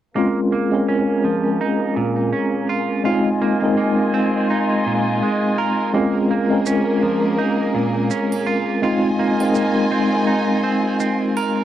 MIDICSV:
0, 0, Header, 1, 5, 480
1, 0, Start_track
1, 0, Key_signature, -5, "minor"
1, 0, Tempo, 722892
1, 106, Time_signature, 4, 2, 24, 8
1, 7729, End_track
2, 0, Start_track
2, 0, Title_t, "Violin section"
2, 0, Program_c, 0, 48
2, 107, Note_on_c, 0, 68, 62
2, 108, Note_on_c, 0, 58, 65
2, 108, Note_on_c, 0, 70, 71
2, 2007, Note_off_c, 0, 68, 0
2, 2007, Note_off_c, 0, 70, 0
2, 2008, Note_off_c, 0, 58, 0
2, 2028, Note_on_c, 0, 65, 71
2, 2029, Note_on_c, 0, 75, 66
2, 2031, Note_on_c, 0, 80, 78
2, 3928, Note_off_c, 0, 65, 0
2, 3928, Note_off_c, 0, 75, 0
2, 3929, Note_off_c, 0, 80, 0
2, 3951, Note_on_c, 0, 58, 74
2, 3951, Note_on_c, 0, 68, 66
2, 3955, Note_on_c, 0, 70, 76
2, 5849, Note_off_c, 0, 58, 0
2, 5849, Note_off_c, 0, 68, 0
2, 5851, Note_off_c, 0, 70, 0
2, 5867, Note_on_c, 0, 65, 73
2, 5868, Note_on_c, 0, 75, 66
2, 5869, Note_on_c, 0, 80, 85
2, 7729, Note_off_c, 0, 65, 0
2, 7729, Note_off_c, 0, 75, 0
2, 7729, Note_off_c, 0, 80, 0
2, 7729, End_track
3, 0, Start_track
3, 0, Title_t, "Tine electric piano"
3, 0, Program_c, 1, 4
3, 101, Note_on_c, 1, 56, 70
3, 107, Note_on_c, 1, 60, 64
3, 111, Note_on_c, 1, 61, 63
3, 119, Note_on_c, 1, 65, 83
3, 236, Control_c, 1, 64, 127
3, 452, Note_off_c, 1, 56, 0
3, 454, Note_off_c, 1, 60, 0
3, 456, Note_off_c, 1, 61, 0
3, 461, Note_off_c, 1, 65, 0
3, 475, Note_on_c, 1, 56, 65
3, 486, Note_on_c, 1, 60, 61
3, 487, Note_on_c, 1, 61, 59
3, 493, Note_on_c, 1, 70, 75
3, 567, Note_off_c, 1, 56, 0
3, 573, Note_off_c, 1, 60, 0
3, 574, Note_off_c, 1, 61, 0
3, 576, Note_off_c, 1, 70, 0
3, 2018, Note_on_c, 1, 56, 74
3, 2024, Note_on_c, 1, 60, 67
3, 2028, Note_on_c, 1, 63, 69
3, 2033, Control_c, 1, 64, 0
3, 2033, Note_on_c, 1, 65, 83
3, 2162, Control_c, 1, 64, 127
3, 2370, Note_off_c, 1, 56, 0
3, 2373, Note_off_c, 1, 60, 0
3, 2375, Note_off_c, 1, 63, 0
3, 2378, Note_off_c, 1, 65, 0
3, 2403, Note_on_c, 1, 56, 70
3, 2405, Note_on_c, 1, 60, 63
3, 2413, Note_on_c, 1, 63, 59
3, 2420, Note_on_c, 1, 70, 74
3, 2492, Note_off_c, 1, 56, 0
3, 2493, Note_off_c, 1, 60, 0
3, 2497, Note_off_c, 1, 63, 0
3, 2500, Note_off_c, 1, 70, 0
3, 3939, Note_on_c, 1, 56, 76
3, 3944, Note_on_c, 1, 60, 69
3, 3948, Note_on_c, 1, 61, 70
3, 3955, Control_c, 1, 64, 0
3, 3955, Note_on_c, 1, 65, 81
3, 4082, Control_c, 1, 64, 127
3, 4290, Note_off_c, 1, 56, 0
3, 4293, Note_off_c, 1, 60, 0
3, 4295, Note_off_c, 1, 61, 0
3, 4298, Note_off_c, 1, 65, 0
3, 4316, Note_on_c, 1, 56, 70
3, 4323, Note_on_c, 1, 60, 60
3, 4327, Note_on_c, 1, 61, 64
3, 4335, Note_on_c, 1, 70, 79
3, 4408, Note_off_c, 1, 56, 0
3, 4411, Note_off_c, 1, 60, 0
3, 4413, Note_off_c, 1, 61, 0
3, 4418, Note_off_c, 1, 70, 0
3, 5857, Note_on_c, 1, 56, 74
3, 5862, Note_on_c, 1, 60, 69
3, 5867, Note_on_c, 1, 63, 67
3, 5873, Control_c, 1, 64, 0
3, 5874, Note_on_c, 1, 65, 85
3, 5978, Control_c, 1, 64, 127
3, 6210, Note_off_c, 1, 56, 0
3, 6212, Note_off_c, 1, 60, 0
3, 6215, Note_off_c, 1, 63, 0
3, 6218, Note_off_c, 1, 65, 0
3, 6241, Note_on_c, 1, 56, 70
3, 6245, Note_on_c, 1, 60, 69
3, 6254, Note_on_c, 1, 63, 65
3, 6257, Note_on_c, 1, 70, 77
3, 6330, Note_off_c, 1, 56, 0
3, 6332, Note_off_c, 1, 60, 0
3, 6337, Note_off_c, 1, 63, 0
3, 6338, Note_off_c, 1, 70, 0
3, 7729, End_track
4, 0, Start_track
4, 0, Title_t, "Clean electric guitar"
4, 0, Program_c, 2, 27
4, 103, Note_on_c, 2, 58, 71
4, 261, Note_off_c, 2, 58, 0
4, 346, Note_on_c, 2, 58, 65
4, 566, Note_off_c, 2, 58, 0
4, 587, Note_on_c, 2, 61, 69
4, 817, Note_off_c, 2, 61, 0
4, 825, Note_on_c, 2, 53, 69
4, 1055, Note_off_c, 2, 53, 0
4, 1069, Note_on_c, 2, 63, 72
4, 1288, Note_off_c, 2, 63, 0
4, 1305, Note_on_c, 2, 46, 89
4, 1535, Note_off_c, 2, 46, 0
4, 1545, Note_on_c, 2, 61, 68
4, 1775, Note_off_c, 2, 61, 0
4, 1788, Note_on_c, 2, 65, 71
4, 2007, Note_off_c, 2, 65, 0
4, 2026, Note_on_c, 2, 65, 70
4, 2182, Note_off_c, 2, 65, 0
4, 2269, Note_on_c, 2, 58, 68
4, 2488, Note_off_c, 2, 58, 0
4, 2505, Note_on_c, 2, 58, 68
4, 2735, Note_off_c, 2, 58, 0
4, 2748, Note_on_c, 2, 60, 92
4, 2977, Note_off_c, 2, 60, 0
4, 2990, Note_on_c, 2, 63, 70
4, 3208, Note_off_c, 2, 63, 0
4, 3228, Note_on_c, 2, 46, 90
4, 3457, Note_off_c, 2, 46, 0
4, 3471, Note_on_c, 2, 56, 68
4, 3699, Note_off_c, 2, 56, 0
4, 3707, Note_on_c, 2, 70, 96
4, 3927, Note_off_c, 2, 70, 0
4, 3945, Note_on_c, 2, 58, 70
4, 4101, Note_off_c, 2, 58, 0
4, 4187, Note_on_c, 2, 58, 66
4, 4407, Note_off_c, 2, 58, 0
4, 4425, Note_on_c, 2, 61, 73
4, 4656, Note_off_c, 2, 61, 0
4, 4664, Note_on_c, 2, 53, 66
4, 4895, Note_off_c, 2, 53, 0
4, 4903, Note_on_c, 2, 63, 73
4, 5125, Note_off_c, 2, 63, 0
4, 5144, Note_on_c, 2, 46, 91
4, 5375, Note_off_c, 2, 46, 0
4, 5382, Note_on_c, 2, 61, 69
4, 5614, Note_off_c, 2, 61, 0
4, 5620, Note_on_c, 2, 65, 74
4, 5843, Note_off_c, 2, 65, 0
4, 5862, Note_on_c, 2, 65, 75
4, 6020, Note_off_c, 2, 65, 0
4, 6103, Note_on_c, 2, 58, 71
4, 6325, Note_off_c, 2, 58, 0
4, 6343, Note_on_c, 2, 58, 74
4, 6575, Note_off_c, 2, 58, 0
4, 6584, Note_on_c, 2, 60, 92
4, 6815, Note_off_c, 2, 60, 0
4, 6819, Note_on_c, 2, 63, 78
4, 7043, Note_off_c, 2, 63, 0
4, 7061, Note_on_c, 2, 60, 73
4, 7284, Note_off_c, 2, 60, 0
4, 7304, Note_on_c, 2, 60, 71
4, 7525, Note_off_c, 2, 60, 0
4, 7548, Note_on_c, 2, 70, 77
4, 7729, Note_off_c, 2, 70, 0
4, 7729, End_track
5, 0, Start_track
5, 0, Title_t, "Drums"
5, 4421, Note_on_c, 9, 82, 78
5, 4488, Note_off_c, 9, 82, 0
5, 5382, Note_on_c, 9, 82, 69
5, 5449, Note_off_c, 9, 82, 0
5, 5526, Note_on_c, 9, 81, 70
5, 5592, Note_off_c, 9, 81, 0
5, 6243, Note_on_c, 9, 81, 71
5, 6310, Note_off_c, 9, 81, 0
5, 6340, Note_on_c, 9, 82, 74
5, 6406, Note_off_c, 9, 82, 0
5, 7302, Note_on_c, 9, 82, 70
5, 7369, Note_off_c, 9, 82, 0
5, 7547, Note_on_c, 9, 81, 76
5, 7614, Note_off_c, 9, 81, 0
5, 7729, End_track
0, 0, End_of_file